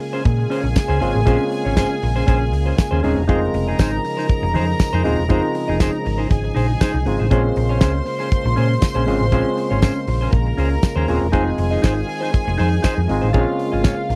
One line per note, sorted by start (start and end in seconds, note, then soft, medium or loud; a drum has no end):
0.00 11.29 C#3 medium
0.00 3.25 G#3 medium
0.00 3.25 A#3 medium
0.00 3.25 F4 medium
0.00 3.25 G#4 medium
0.00 3.24 G#5 loud
0.00 muted clean electric guitar stroke medium
0.00 open hi-hat medium
0.13 0.24 C#4 medium
0.13 0.24 G#4 medium
0.13 0.25 C5 medium
0.25 0.44 A#2 loud
0.25 muted clean electric guitar stroke soft
0.25 kick loud
0.25 closed hi-hat medium
0.38 muted clean electric guitar stroke medium
0.50 0.67 C#4 medium
0.50 0.64 G#4 medium
0.50 0.62 C5 loud
0.50 open hi-hat medium
0.64 0.73 A#1 loud
0.64 muted clean electric guitar stroke soft
0.75 muted clean electric guitar stroke soft
0.75 kick loud
0.75 snare loud
0.75 closed hi-hat medium
0.75 tambourine loud
0.88 0.98 C#2 loud
0.88 0.99 C#4 medium
0.88 1.00 G#4 medium
0.88 1.01 C5 medium
1.00 1.11 G#1 loud
1.00 1.20 G#3 medium
1.00 1.20 C4 medium
1.00 1.14 C#4 medium
1.00 1.20 C#4 medium
1.00 1.21 F4 medium
1.00 1.14 G#4 medium
1.00 1.13 C5 medium
1.00 open hi-hat medium
1.14 1.24 A1 medium
1.14 muted clean electric guitar stroke soft
1.25 1.36 A#1 loud
1.25 2.00 G#3 medium
1.25 2.01 C4 medium
1.25 1.43 C#4 medium
1.25 2.01 C#4 medium
1.25 2.01 F4 loud
1.25 1.40 G#4 loud
1.25 1.38 C5 loud
1.25 kick loud
1.25 closed hi-hat medium
1.40 muted clean electric guitar stroke soft
1.51 muted clean electric guitar stroke soft
1.51 open hi-hat medium
1.65 1.84 G#1 medium
1.65 1.76 C#4 medium
1.65 1.77 G#4 medium
1.65 1.77 C#5 medium
1.77 1.94 C#4 medium
1.77 1.91 G#4 medium
1.77 1.90 C5 loud
1.77 kick loud
1.77 snare loud
1.77 closed hi-hat medium
1.77 tambourine medium
1.91 muted clean electric guitar stroke soft
2.03 2.21 A#1 loud
2.03 muted clean electric guitar stroke medium
2.03 open hi-hat medium
2.16 2.26 C#4 medium
2.16 2.27 G#4 medium
2.16 2.28 C5 medium
2.27 2.53 A#1 loud
2.27 2.44 C#4 medium
2.27 2.41 G#4 medium
2.27 2.39 C5 medium
2.27 kick loud
2.27 closed hi-hat medium
2.41 muted clean electric guitar stroke soft
2.53 2.71 C#2 medium
2.53 muted clean electric guitar stroke soft
2.53 open hi-hat medium
2.66 2.76 C#4 soft
2.66 2.77 G#4 medium
2.66 2.78 C5 medium
2.77 muted clean electric guitar stroke medium
2.77 kick loud
2.77 snare loud
2.77 closed hi-hat medium
2.77 tambourine medium
2.91 3.00 D#2 loud
2.91 3.02 C#4 medium
2.91 3.03 G#4 medium
2.91 3.03 C5 medium
3.03 3.14 D#1 medium
3.03 3.22 G#3 medium
3.03 3.22 C4 medium
3.03 3.17 C#4 medium
3.03 3.22 C#4 medium
3.03 3.23 D#4 medium
3.03 3.16 G#4 medium
3.03 3.15 C5 medium
3.03 open hi-hat medium
3.16 3.26 E1 medium
3.16 muted clean electric guitar stroke medium
3.28 3.47 F1 loud
3.28 7.28 F3 medium
3.28 4.02 G#3 medium
3.28 14.15 G#3 medium
3.28 4.02 C4 medium
3.28 3.45 D#4 medium
3.28 7.27 D#4 medium
3.28 4.03 D#4 medium
3.28 4.03 F4 loud
3.28 3.42 G#4 medium
3.28 6.27 A#4 medium
3.28 3.40 C5 medium
3.28 6.27 A#5 loud
3.28 kick loud
3.28 closed hi-hat medium
3.41 muted clean electric guitar stroke soft
3.54 3.72 F1 loud
3.54 muted clean electric guitar stroke soft
3.54 open hi-hat medium
3.68 3.78 D#4 medium
3.68 3.79 G#4 medium
3.68 3.79 D#5 medium
3.79 3.98 G#1 loud
3.79 3.96 D#4 medium
3.79 3.93 G#4 medium
3.79 3.92 C5 medium
3.79 kick loud
3.79 snare loud
3.79 closed hi-hat medium
3.79 tambourine loud
3.93 muted clean electric guitar stroke soft
4.05 muted clean electric guitar stroke soft
4.05 open hi-hat medium
4.17 4.28 D#4 medium
4.17 4.28 G#4 medium
4.17 4.29 C5 medium
4.17 snare soft
4.29 muted clean electric guitar stroke medium
4.29 kick loud
4.29 closed hi-hat medium
4.43 4.56 F1 loud
4.43 muted clean electric guitar stroke medium
4.54 4.73 F2 medium
4.54 4.71 D#4 medium
4.54 4.68 G#4 medium
4.54 4.66 C5 medium
4.54 open hi-hat medium
4.67 muted clean electric guitar stroke soft
4.79 muted clean electric guitar stroke medium
4.79 kick loud
4.79 snare loud
4.79 closed hi-hat medium
4.79 tambourine medium
4.93 5.02 F2 medium
4.93 5.03 D#4 medium
4.93 5.04 G#4 medium
4.93 5.05 C5 medium
5.03 5.15 D#1 loud
5.03 5.23 G#3 medium
5.03 5.24 C4 medium
5.03 5.18 D#4 medium
5.03 5.24 D#4 medium
5.03 5.24 F4 medium
5.03 5.18 G#4 medium
5.03 5.17 C5 medium
5.03 open hi-hat medium
5.19 5.27 E1 medium
5.29 5.40 F1 loud
5.29 6.03 G#3 medium
5.29 6.04 C4 medium
5.29 5.46 D#4 medium
5.29 6.04 D#4 medium
5.29 6.04 F4 medium
5.29 5.44 G#4 medium
5.29 5.42 C5 medium
5.29 kick loud
5.29 closed hi-hat medium
5.44 muted clean electric guitar stroke soft
5.55 muted clean electric guitar stroke soft
5.55 open hi-hat medium
5.68 5.87 F1 medium
5.68 5.79 D#4 medium
5.68 5.80 G#4 medium
5.68 5.80 D#5 medium
5.80 5.97 D#4 medium
5.80 5.93 G#4 loud
5.80 5.92 C5 medium
5.80 kick loud
5.80 snare loud
5.80 closed hi-hat medium
5.80 tambourine medium
5.93 muted clean electric guitar stroke medium
6.05 6.24 G#1 loud
6.05 muted clean electric guitar stroke soft
6.05 open hi-hat medium
6.18 6.29 D#4 medium
6.18 6.29 G#4 medium
6.18 6.30 C5 medium
6.30 6.49 G#1 loud
6.30 7.30 G#4 medium
6.30 7.29 G#5 medium
6.30 muted clean electric guitar stroke soft
6.30 kick loud
6.30 closed hi-hat medium
6.44 muted clean electric guitar stroke medium
6.55 6.74 A#1 medium
6.55 6.72 D#4 medium
6.55 6.69 G#4 medium
6.55 6.68 C5 medium
6.55 open hi-hat medium
6.69 muted clean electric guitar stroke soft
6.81 6.97 D#4 loud
6.81 6.95 G#4 loud
6.81 6.93 C5 loud
6.81 kick loud
6.81 snare loud
6.81 closed hi-hat medium
6.81 tambourine loud
6.94 7.03 C2 loud
6.94 muted clean electric guitar stroke soft
7.06 7.16 G#1 loud
7.06 7.25 G#3 medium
7.06 7.25 C4 medium
7.06 7.25 D#4 medium
7.06 7.26 F4 medium
7.06 muted clean electric guitar stroke soft
7.06 open hi-hat medium
7.19 7.28 A1 medium
7.19 7.30 D#4 soft
7.19 7.30 G#4 medium
7.19 7.31 C5 medium
7.31 7.50 A#1 loud
7.31 8.05 G#3 medium
7.31 11.29 A#3 medium
7.31 8.05 C4 medium
7.31 7.48 C#4 medium
7.31 8.05 C#4 medium
7.31 11.29 F4 medium
7.31 8.05 F4 loud
7.31 7.44 G#4 loud
7.31 10.28 C5 medium
7.31 7.43 C5 medium
7.31 10.29 C6 loud
7.31 kick loud
7.31 closed hi-hat medium
7.44 muted clean electric guitar stroke medium
7.56 7.81 A#1 loud
7.56 muted clean electric guitar stroke soft
7.56 open hi-hat medium
7.69 7.79 C#4 medium
7.69 7.80 G#4 medium
7.69 7.81 C#5 medium
7.80 8.00 C#2 medium
7.80 7.98 C#4 medium
7.80 7.94 G#4 medium
7.80 7.93 C5 medium
7.80 kick loud
7.80 snare loud
7.80 closed hi-hat medium
7.80 tambourine loud
7.94 muted clean electric guitar stroke soft
8.06 muted clean electric guitar stroke soft
8.06 open hi-hat medium
8.19 8.31 C#4 medium
8.19 8.31 G#4 medium
8.19 8.31 C5 medium
8.19 snare soft
8.32 muted clean electric guitar stroke soft
8.32 kick loud
8.32 closed hi-hat medium
8.44 8.54 A#1 loud
8.44 muted clean electric guitar stroke soft
8.56 8.76 A#2 medium
8.56 8.73 C#4 medium
8.56 8.70 G#4 medium
8.56 8.68 C5 medium
8.56 open hi-hat medium
8.70 muted clean electric guitar stroke soft
8.81 muted clean electric guitar stroke soft
8.81 kick loud
8.81 snare loud
8.81 closed hi-hat medium
8.81 tambourine loud
8.95 9.04 A#1 loud
8.95 9.05 C#4 medium
8.95 9.07 G#4 medium
8.95 9.07 C5 loud
9.06 9.17 G#1 medium
9.06 9.26 G#3 medium
9.06 9.26 C4 medium
9.06 9.20 C#4 medium
9.06 9.26 C#4 medium
9.06 9.26 F4 loud
9.06 9.20 G#4 medium
9.06 9.18 C5 medium
9.06 open hi-hat medium
9.20 9.32 A1 medium
9.20 muted clean electric guitar stroke soft
9.32 9.42 A#1 loud
9.32 10.06 G#3 medium
9.32 10.06 C4 medium
9.32 9.49 C#4 medium
9.32 10.07 C#4 medium
9.32 10.07 F4 loud
9.32 9.45 G#4 medium
9.32 9.44 C5 medium
9.32 kick loud
9.32 closed hi-hat medium
9.45 muted clean electric guitar stroke medium
9.57 muted clean electric guitar stroke medium
9.57 open hi-hat medium
9.71 9.89 G#1 medium
9.71 9.81 C#4 medium
9.71 9.82 G#4 medium
9.71 9.82 C#5 medium
9.82 9.99 C#4 medium
9.82 9.95 G#4 medium
9.82 9.94 C5 medium
9.82 kick loud
9.82 snare loud
9.82 closed hi-hat medium
9.82 tambourine medium
9.96 muted clean electric guitar stroke medium
10.07 10.26 A#1 loud
10.07 muted clean electric guitar stroke soft
10.07 open hi-hat medium
10.21 10.32 C#4 medium
10.21 10.32 G#4 medium
10.21 10.33 C5 medium
10.32 10.51 A#1 loud
10.32 11.32 A#4 medium
10.32 11.31 A#5 medium
10.32 muted clean electric guitar stroke soft
10.32 kick loud
10.32 closed hi-hat medium
10.47 muted clean electric guitar stroke medium
10.57 10.76 C#2 medium
10.57 10.74 C#4 medium
10.57 10.71 G#4 medium
10.57 10.70 C5 medium
10.57 open hi-hat medium
10.71 muted clean electric guitar stroke soft
10.83 muted clean electric guitar stroke medium
10.83 kick loud
10.83 snare loud
10.83 closed hi-hat medium
10.83 tambourine medium
10.96 11.05 D#2 loud
10.96 11.07 C#4 medium
10.96 11.08 G#4 medium
10.96 11.09 C5 medium
11.08 11.18 D#1 loud
11.08 11.27 G#3 medium
11.08 11.27 C4 medium
11.08 11.21 C#4 medium
11.08 11.27 C#4 medium
11.08 11.28 F4 loud
11.08 11.21 G#4 medium
11.08 11.20 C5 medium
11.08 open hi-hat medium
11.21 11.30 E1 loud
11.21 muted clean electric guitar stroke soft
11.32 11.52 F1 loud
11.32 13.32 D#3 medium
11.32 12.06 G#3 loud
11.32 13.32 C4 medium
11.32 12.06 C4 medium
11.32 11.49 D#4 medium
11.32 12.07 D#4 medium
11.32 13.32 F4 medium
11.32 12.07 F4 loud
11.32 13.30 G#4 medium
11.32 11.46 G#4 loud
11.32 11.44 C5 medium
11.32 13.30 G#5 loud
11.32 kick loud
11.32 closed hi-hat medium
11.46 muted clean electric guitar stroke soft
11.58 11.77 F1 loud
11.58 muted clean electric guitar stroke soft
11.58 open hi-hat medium
11.71 11.81 D#4 soft
11.71 11.82 G#4 medium
11.71 11.83 D#5 medium
11.82 12.02 G#1 medium
11.82 11.99 D#4 medium
11.82 11.96 G#4 medium
11.82 11.95 C5 loud
11.82 kick loud
11.82 snare loud
11.82 closed hi-hat medium
11.82 tambourine medium
11.96 muted clean electric guitar stroke medium
12.08 muted clean electric guitar stroke soft
12.08 open hi-hat medium
12.21 12.31 D#4 medium
12.21 12.32 G#4 medium
12.21 12.33 C5 medium
12.21 snare soft
12.33 muted clean electric guitar stroke soft
12.33 kick loud
12.33 closed hi-hat medium
12.46 12.56 F1 loud
12.46 muted clean electric guitar stroke medium
12.58 12.78 F2 loud
12.58 12.75 D#4 medium
12.58 12.71 G#4 medium
12.58 12.70 C5 loud
12.58 open hi-hat medium
12.71 muted clean electric guitar stroke soft
12.82 13.00 D#4 medium
12.82 12.97 G#4 loud
12.82 12.96 C5 loud
12.82 kick loud
12.82 snare loud
12.82 closed hi-hat medium
12.82 tambourine loud
12.97 13.06 F2 medium
12.97 muted clean electric guitar stroke soft
13.08 13.19 G#1 loud
13.08 13.28 G#3 medium
13.08 13.28 C4 medium
13.08 13.28 D#4 medium
13.08 13.29 F4 loud
13.08 muted clean electric guitar stroke soft
13.08 open hi-hat medium
13.22 13.31 A1 medium
13.22 13.33 D#4 medium
13.22 13.33 G#4 medium
13.22 13.34 C5 medium
13.33 13.44 A#1 loud
13.33 14.15 C#3 medium
13.33 14.08 G#3 loud
13.33 14.15 A#3 medium
13.33 14.08 C4 medium
13.33 14.08 C#4 loud
13.33 13.41 D#4 medium
13.33 13.50 F4 medium
13.33 14.15 F4 medium
13.33 13.47 G#4 medium
13.33 13.46 C#5 medium
13.33 14.15 F5 loud
13.33 kick loud
13.33 closed hi-hat medium
13.41 14.12 F4 loud
13.48 muted clean electric guitar stroke soft
13.59 muted clean electric guitar stroke soft
13.59 open hi-hat medium
13.72 13.91 G#1 medium
13.72 13.83 F4 medium
13.72 13.84 G#4 medium
13.72 13.84 D#5 medium
13.84 14.01 F4 medium
13.84 13.97 G#4 medium
13.84 13.96 C#5 medium
13.84 kick loud
13.84 snare loud
13.84 closed hi-hat medium
13.84 tambourine medium
13.97 muted clean electric guitar stroke soft
14.10 14.15 A#1 medium
14.10 muted clean electric guitar stroke soft
14.10 open hi-hat medium